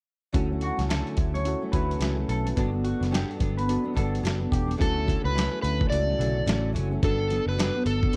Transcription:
0.32 picked electric bass D2, steel-string acoustic guitar D3 F#3 A3 C#4, synth keys C#4 E4 F#4 A4, kick, closed hi-hat
0.50 steel-string acoustic guitar F#3 A3 C#4
0.61 clean electric guitar F#4, closed hi-hat
0.77 picked electric bass C#2, steel-string acoustic guitar F#3 A3 C#4, snare, closed hi-hat
0.89 steel-string acoustic guitar D3 F#3 A3 C#4, clean electric guitar A4, snare, closed hi-hat
1.07 closed hi-hat
1.17 picked electric bass D2, steel-string acoustic guitar D3 F#3 A3 C#4, kick, closed hi-hat
1.33 steel-string acoustic guitar F#3 A3 C#4, clean electric guitar C#5, closed hi-hat
1.45 synth keys C#4 E4 F#4 A4, closed hi-hat
1.61 steel-string acoustic guitar F#3 A3 C#4
1.72 picked electric bass D2, steel-string acoustic guitar D3 F#3 A3 C#4, synth keys C#4 E4 F#4 B4, clean electric guitar B4, kick, closed hi-hat
1.91 closed hi-hat
1.99 picked electric bass C#2, steel-string acoustic guitar D3 F#3 A3 C#4, snare, closed hi-hat
2.16 steel-string acoustic guitar F#3 A3 C#4
2.29 picked electric bass B1, clean electric guitar A4, closed hi-hat
2.44 steel-string acoustic guitar F#3 A3 C#4, closed hi-hat
2.56 picked electric bass G1, steel-string acoustic guitar G2 F#3 B3 D4, synth keys B3 D4 F#4 A4, kick, closed hi-hat
2.72 steel-string acoustic guitar F#3 B3 D4
2.84 clean electric guitar F#4, closed hi-hat
3.00 picked electric bass F#1, steel-string acoustic guitar F#3 B3 D4, snare, closed hi-hat
3.11 steel-string acoustic guitar G2 F#3 B3 D4, clean electric guitar G4, closed hi-hat
3.15 snare
3.31 closed hi-hat
3.38 picked electric bass G1, steel-string acoustic guitar G2 F#3 B3 D4, kick, closed hi-hat
3.56 steel-string acoustic guitar F#3 B3 D4, clean electric guitar B4, closed hi-hat
3.68 synth keys B3 D4 F#4 A4, closed hi-hat
3.84 steel-string acoustic guitar F#3 B3 D4
3.94 picked electric bass G1, steel-string acoustic guitar G2 F#3 B3 D4, synth keys B3 D4, clean electric guitar A4, kick, closed hi-hat
3.98 synth keys F#4 A4
4.15 closed hi-hat
4.23 picked electric bass F#1, steel-string acoustic guitar G2 F#3 B3 D4, closed hi-hat
4.27 snare
4.39 steel-string acoustic guitar F#3 B3 D4
4.52 picked electric bass E1, clean electric guitar G4, kick, closed hi-hat
4.66 steel-string acoustic guitar F#3 B3 D4
4.71 closed hi-hat
4.77 picked electric bass D2, steel-string acoustic guitar D3 F#3 A3 C#4, synth keys C#4 E4 F#4, kick
4.81 electric slide guitar A4, synth keys A4, closed hi-hat
5.06 steel-string acoustic guitar D3 F#3 A3 C#4, kick, closed hi-hat
5.24 picked electric bass C#2, electric slide guitar B4
5.35 steel-string acoustic guitar D3 F#3 A3 C#4, closed hi-hat
5.39 snare
5.50 steel-string acoustic guitar F#3 A3 C#4
5.62 picked electric bass D2, electric slide guitar B4, closed hi-hat
5.78 steel-string acoustic guitar F#3 A3 C#4, kick
5.90 picked electric bass C#2, synth keys C#4 E4 F#4, electric slide guitar D5, closed hi-hat
5.94 synth keys A4
6.07 steel-string acoustic guitar F#3 A3 C#4
6.18 picked electric bass B1, synth keys C#3 E4 F#4 A4, steel-string acoustic guitar D3 F#3 A3 C#4, closed hi-hat
6.46 picked electric bass A1, steel-string acoustic guitar D3 F#3 A3 C#4, snare, closed hi-hat
6.73 picked electric bass F#1, steel-string acoustic guitar D3 F#3 A3 C#4, closed hi-hat
6.91 steel-string acoustic guitar F#3 A3 C#4
7.02 picked electric bass G1, steel-string acoustic guitar G2 F#3 B3 D4, synth keys B3 D4 F#4 A4, electric slide guitar A4, kick, closed hi-hat
7.30 steel-string acoustic guitar G2 F#3 B3 D4, closed hi-hat
7.46 picked electric bass F#1, electric slide guitar B4
7.58 steel-string acoustic guitar G2 F#3 B3 D4, snare, closed hi-hat
7.74 steel-string acoustic guitar F#3 B3 D4
7.86 picked electric bass G1, electric slide guitar A4, closed hi-hat
8.02 steel-string acoustic guitar F#3 B3 D4, kick
8.13 closed hi-hat

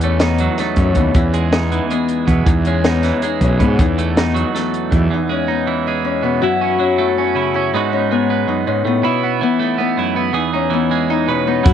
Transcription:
Already playing: fingered electric bass E2, clean electric guitar E2, harp B3 D#4
0.01 clean electric guitar A3, harp C#4, closed hi-hat
0.20 harp B3, clean electric guitar D#4, snare, closed hi-hat
0.38 clean electric guitar F#3, closed hi-hat
0.58 clean electric guitar A3, harp D#4, snare, closed hi-hat
0.76 fingered electric bass F#2, harp C#4, kick, closed hi-hat
0.95 fingered electric bass D#2, clean electric guitar E2, harp B3, kick, closed hi-hat
1.14 fingered electric bass E2, clean electric guitar E2, harp E4, kick, closed hi-hat
1.33 clean electric guitar G#3, closed hi-hat
1.52 harp B3, clean electric guitar D#4, snare, closed hi-hat
1.71 clean electric guitar E3, harp D#4, closed hi-hat
1.91 clean electric guitar G#3, harp B3, closed hi-hat
2.08 closed hi-hat
2.27 fingered electric bass E2, clean electric guitar B2, harp E4, kick, closed hi-hat
2.46 clean electric guitar E2, fingered electric bass E2, harp D#4, kick, closed hi-hat
2.65 clean electric guitar G#3, harp C#4, closed hi-hat
2.84 harp B3, clean electric guitar D#4, snare, closed hi-hat
3.03 clean electric guitar E3, snare, closed hi-hat
3.22 clean electric guitar G#3, harp D#4, closed hi-hat
3.41 fingered electric bass B1, harp C#4, kick, closed hi-hat
3.59 fingered electric bass G#2, clean electric guitar B2, harp B3, kick, closed hi-hat
3.79 fingered electric bass E2, clean electric guitar E2, harp D#4, kick, closed hi-hat
3.98 clean electric guitar A3, closed hi-hat
4.17 harp B3, clean electric guitar D#4, snare, closed hi-hat
4.34 clean electric guitar F#3, harp D#4, closed hi-hat
4.55 clean electric guitar A3, harp B3, snare, closed hi-hat
4.74 closed hi-hat
4.91 clean electric guitar E2, fingered electric bass E2, harp E4, kick, closed hi-hat
5.10 clean electric guitar E2, harp D#4
5.29 clean electric guitar G#3, harp C#4
5.48 harp B3, clean electric guitar D#4
5.67 clean electric guitar E3
5.87 clean electric guitar G#3, harp D#4
6.05 harp C#4
6.23 clean electric guitar B2, harp B3
6.42 clean electric guitar F#2 E4, harp F#4
6.62 clean electric guitar C#4
6.80 clean electric guitar F#3, harp C#4
6.98 clean electric guitar A3, harp E4
7.18 harp C#4, clean electric guitar C#4
7.35 clean electric guitar C#3 E4
7.54 clean electric guitar C#4, harp E4
7.74 clean electric guitar G#2 G#3 B3 D#4 F#4, harp D#4
7.93 harp C#4, clean electric guitar D#4
8.11 clean electric guitar G#3, harp B3
8.30 clean electric guitar B3
8.47 clean electric guitar F#2, harp D#4
8.67 clean electric guitar G#2, harp C#4
8.85 clean electric guitar A2, harp B3
9.03 clean electric guitar B2 E4, harp E4
9.24 clean electric guitar B3
9.41 clean electric guitar E3, harp B3
9.59 clean electric guitar A3, harp D#4
9.78 clean electric guitar B3, harp B3
9.97 clean electric guitar F#2 E4
10.16 clean electric guitar B3, harp E4
10.33 clean electric guitar E2 G#4, harp D#4
10.53 harp C#4, clean electric guitar D#4
10.70 clean electric guitar E3, harp B3
10.91 clean electric guitar G#3
11.10 harp D#4, clean electric guitar D#4
11.28 clean electric guitar B2 B4, harp C#4
11.47 harp B3, clean electric guitar D#4
11.63 clean electric guitar F#2 E4, fingered electric bass F#2, harp F#4, kick, closed hi-hat

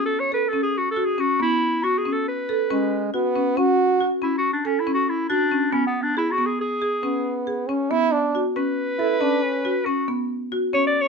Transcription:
Already playing: marimba C#4
0.06 clarinet A4
0.19 clarinet C#5
0.32 marimba A4, clarinet B4
0.49 clarinet A4
0.53 marimba C#4
0.63 clarinet G#4
0.78 clarinet F#4
0.91 clarinet A4
0.96 marimba F#4
1.05 clarinet G#4
1.18 marimba C#4, clarinet F#4
1.40 marimba B3, clarinet E4
1.83 clarinet F#4, marimba F#4
1.98 clarinet G#4
2.05 marimba C#4
2.13 clarinet A4
2.28 clarinet B4
2.49 marimba A4
2.70 french horn G#3, marimba C#4
3.14 french horn B3, marimba F#4
3.36 marimba C#4
3.57 marimba C#4, french horn F#4
4.01 marimba F#4
4.22 marimba C#4, clarinet E4
4.38 clarinet F#4
4.53 clarinet D4
4.65 clarinet C#4, marimba A4
4.80 clarinet E4
4.87 marimba C#4
4.94 clarinet F#4
5.09 clarinet E4
5.29 clarinet D4, marimba F#4
5.51 marimba C#4
5.72 marimba B3, clarinet C#4
5.87 clarinet B3
6.03 clarinet D4
6.17 clarinet E4, marimba G#4
6.31 clarinet F#4
6.38 marimba B3
6.46 clarinet G#4
6.61 clarinet G#4
6.82 marimba G#4
7.03 french horn B3, marimba C#4
7.47 marimba G#4
7.69 french horn C#4, marimba C#4
7.91 marimba B3, french horn E4
8.12 french horn D4
8.35 marimba F#4
8.56 marimba C#4, clarinet B4
8.99 french horn E4, marimba A4
9.21 marimba C#4, french horn D4
9.43 french horn C#4
9.65 marimba F#4
9.85 marimba C#4, clarinet F#4
10.08 marimba B3
10.52 marimba F#4
10.73 marimba C#4, clarinet C#5
10.87 clarinet D5
11.01 clarinet C#5

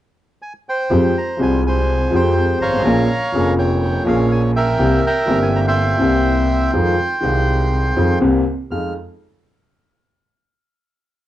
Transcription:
0.42 bandoneon G#5
0.69 bandoneon C5 G5
0.90 double bass F2, upright piano F2 F3 G#3 C4 G4
1.18 bandoneon A#5
1.37 upright piano C2 C3 F3 G#3 C4, double bass C2
1.41 upright piano G3, bandoneon G#5
1.67 bandoneon C5 G#5
2.11 double bass F2, upright piano F2 F3 G#3 C4 G4
2.15 bandoneon C5 G5
2.60 double bass G#1, bandoneon C#5 F5 A#5
2.68 upright piano G1
2.73 upright piano G#1
2.79 upright piano A1
2.84 upright piano A#1 A#2 F3 A#3 C#4 G#4, double bass A#1
3.32 double bass F1, upright piano F1 F2 F3 A#3 C#4
3.36 upright piano G#4
3.59 bandoneon C#5 G5
4.04 upright piano A#1 A#2 F3 A#3 C#4, double bass A#1, bandoneon F5
4.08 upright piano G#4
4.32 bandoneon G#5
4.56 bandoneon A#4 E5 G5
4.78 double bass C2, upright piano C2 C3 E3 A#3 C4 G4
5.07 bandoneon E5 G5 A#5
5.25 upright piano G1 G2 E3 A#3 C4, double bass G1
5.29 upright piano G4
5.42 bandoneon G#5
5.56 bandoneon A#5
5.67 bandoneon E5 G5 C6
5.97 upright piano C2 C3 E3 A#3 C4, double bass C2
6.02 upright piano G4
6.73 upright piano F2 D#3 F3 G#3 C4 F4, double bass F2
7.21 upright piano C2 C3 D#3 G#3 C4 F4, double bass C2
7.96 double bass F2, upright piano F2 D#3 F3 G#3 C4 F4
8.21 double bass C2, upright piano C2 C3 E3 A#3 C4 G4
8.71 double bass F2, upright piano F2 G#3 D#4 F4, bandoneon F6

